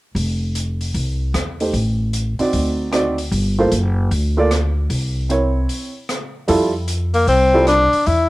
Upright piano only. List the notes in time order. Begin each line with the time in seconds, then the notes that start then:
1.61 A3 D#4 G4 C5
2.39 C4 D#4 F#4 D5
2.92 C4 D#4 F#4 D5
3.58 A#3 F4 A4 C5
4.37 A#3 F4 A4 D5
5.29 C4 E4 A#4 C#5
6.48 G3 E4 F4 A4
7.54 G3 E4 F4 A4